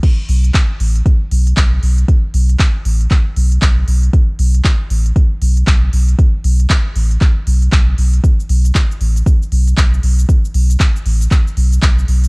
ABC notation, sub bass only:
X:1
M:4/4
L:1/8
Q:"Swing 16ths" 1/4=117
K:Amix
V:1 name="Sub bass" clef=bass
z B,,, z A,,, z B,,, B,,, B,,, | z B,,, z A,,, z B,,, B,,, B,,, | z B,,, z A,,, z B,,, B,,, B,,, | z B,,, z A,,, z B,,, B,,, B,,, |
z B,,, z A,,, z B,,, B,,, B,,, | z B,,, z A,,, z B,,, B,,, B,,, |]